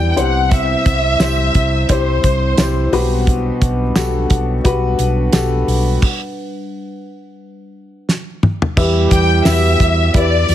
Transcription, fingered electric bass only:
Already playing: E2
0.17 C2
0.86 C2
1.20 C2
1.55 C2
1.89 C2
2.24 C2
2.58 C2
2.92 B1
3.62 B1
3.96 B1
4.30 B1
4.65 B1
4.99 B1
5.34 B1
5.68 B1
8.77 E2
9.11 E2
9.46 E2
9.80 E2
10.14 E2
10.49 E2

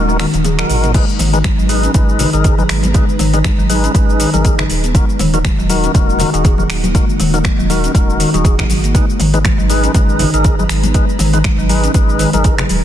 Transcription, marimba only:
0.19 D#3
0.44 G#4
0.58 F#3
0.83 A#3
0.94 G#3
1.19 D#3
1.59 F#3
1.84 C#4
1.94 G#3
2.20 D#3
2.45 G#4
2.59 F#3
2.84 B3
2.94 G#3
3.20 D#3
3.59 F#3
3.84 C#4
3.95 G#3
4.20 D#3
4.45 G#4
4.59 F#3
4.84 B3
4.95 G#3
5.20 D#3
5.45 G#3
5.59 F#3
5.84 C#4
5.94 G#3
6.20 D#3
6.45 G#4
6.59 F#3
6.84 A#3
6.95 G#3
7.20 D#3
7.59 F#3
7.84 C#4
7.94 G#3
8.20 D#3
8.44 G#4
8.59 F#3
8.83 A#3
8.94 G#3
9.19 D#3
9.44 G#3
9.58 F#3
9.83 C#4
9.94 G#3
10.19 D#3
10.44 G#4
10.58 F#3
10.84 B3
10.94 G#3
11.19 D#3
11.44 G#3
11.59 F#3
11.83 C#4
11.94 G#3
12.19 D#3
12.44 G#4
12.59 F#3

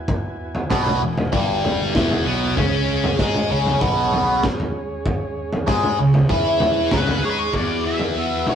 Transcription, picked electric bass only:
0.71 B1
1.01 E1
1.33 G1
1.95 E1
2.26 B1
2.57 C#2
3.19 G#2
3.50 C#2
3.81 B1
5.68 G#2
5.99 C#2
6.29 E2
6.92 C#2
7.22 G#2
7.53 E2
8.15 E2
8.47 B1

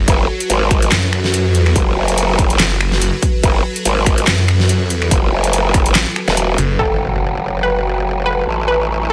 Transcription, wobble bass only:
0.08 F#1
0.50 G#1
1.76 F#1
1.97 F#1
3.43 F#1
3.85 G#1
5.11 F#1
5.32 F#1
6.28 E1
6.79 F#1
8.47 A1

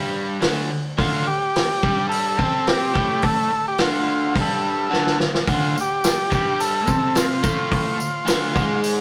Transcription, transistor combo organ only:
0.98 F4
1.27 G4
2.09 A4
2.69 G4
3.23 A4
3.68 G4
3.82 F4
4.41 A4
5.54 F4
5.81 G4
6.34 G4
6.60 A4
7.18 F4
7.73 F4

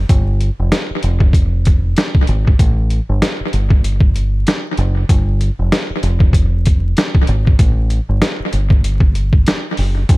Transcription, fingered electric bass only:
0.10 G1
0.59 F1
0.91 muted fingered electric bass stroke
1.04 F1
2.29 G#1
2.60 A1
3.09 G1
3.41 muted fingered electric bass stroke
3.53 G1
4.78 F#1
5.10 G1
5.59 F1
5.90 muted fingered electric bass stroke
6.03 F1
7.29 G#1
7.60 A1
8.09 G1
8.40 muted fingered electric bass stroke
8.53 G1
9.78 F#1
10.10 G1

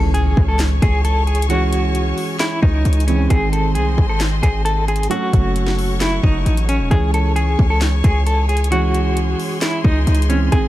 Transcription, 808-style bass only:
Already playing: C#2
0.37 C#2
0.82 C#2
2.63 C#2
2.85 C#2
3.30 G#1
3.75 C2
3.98 G#1
4.43 G#1
5.33 F#1
6.24 F#1
6.46 A1
6.80 E1
6.91 C#2
7.59 C#2
8.04 C#2
9.85 C#2
10.07 C#2
10.52 G#1

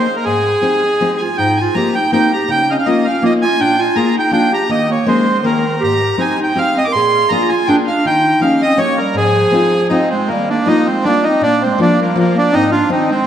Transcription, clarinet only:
1.21 F4
1.39 D#4
1.61 F4
1.77 G4
1.96 D#4
2.13 D#4
2.33 G4
2.51 D#4
2.71 C4 C#4
2.79 C#4
2.88 A#3
3.06 C#4
3.23 A#3
3.43 F4
3.60 D4
3.79 F4
3.98 F4
4.17 D#4
4.33 D4
4.52 G4
4.70 A#3
4.90 A#3
5.07 G#3
5.43 D#3
5.80 G4
6.18 D#4
6.39 D#4
6.54 C4
6.75 C4
6.87 A#4
6.96 G#4
7.32 F4
7.51 F4
7.69 D4
7.90 D4
8.06 D#4
8.43 C#4
8.64 C4
8.80 A#3
9.01 G3
9.20 F3
9.92 C4
10.12 G#3
10.32 G3
10.51 A#3
10.69 A#3
10.90 G#3
11.07 A#3
11.28 C4
11.44 A#3
11.64 G#3
11.81 A#3
12.00 G3
12.16 F3
12.35 A#3
12.53 C4
12.72 D4
12.91 C4
13.10 G#3

